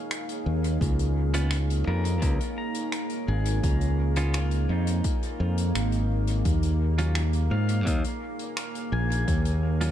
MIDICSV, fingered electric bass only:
0, 0, Header, 1, 2, 480
1, 0, Start_track
1, 0, Tempo, 705882
1, 551, Time_signature, 4, 2, 24, 8
1, 6742, End_track
2, 0, Start_track
2, 0, Title_t, "Fingered electric bass"
2, 0, Program_c, 0, 33
2, 314, Note_on_c, 0, 39, 85
2, 524, Note_off_c, 0, 39, 0
2, 552, Note_on_c, 0, 37, 98
2, 1249, Note_off_c, 0, 37, 0
2, 1274, Note_on_c, 0, 41, 100
2, 1511, Note_off_c, 0, 41, 0
2, 1511, Note_on_c, 0, 37, 79
2, 1617, Note_off_c, 0, 37, 0
2, 2231, Note_on_c, 0, 32, 97
2, 2443, Note_off_c, 0, 32, 0
2, 2471, Note_on_c, 0, 37, 97
2, 3168, Note_off_c, 0, 37, 0
2, 3190, Note_on_c, 0, 41, 91
2, 3402, Note_off_c, 0, 41, 0
2, 3672, Note_on_c, 0, 41, 91
2, 3883, Note_off_c, 0, 41, 0
2, 3910, Note_on_c, 0, 32, 77
2, 4368, Note_off_c, 0, 32, 0
2, 4389, Note_on_c, 0, 39, 99
2, 5087, Note_off_c, 0, 39, 0
2, 5107, Note_on_c, 0, 44, 97
2, 5350, Note_off_c, 0, 44, 0
2, 5350, Note_on_c, 0, 39, 80
2, 5457, Note_off_c, 0, 39, 0
2, 6066, Note_on_c, 0, 34, 97
2, 6280, Note_off_c, 0, 34, 0
2, 6309, Note_on_c, 0, 39, 100
2, 6742, Note_off_c, 0, 39, 0
2, 6742, End_track
0, 0, End_of_file